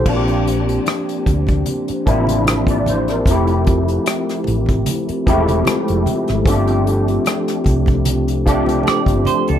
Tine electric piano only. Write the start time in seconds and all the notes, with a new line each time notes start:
Already playing: C5
0.06 F3 A#3 C4 D4 F#4
0.16 G4
2.06 F3 A#3 C4 D4 E4
2.48 E5
2.70 D5
2.89 C5
3.11 A#4
3.28 F3 A3 C4 E4 G4
5.26 F3 G#3 C4 E4 G4
5.33 A3
6.46 F3 A3 C4 D4 G4
8.45 F3 A3 C4 D4 G4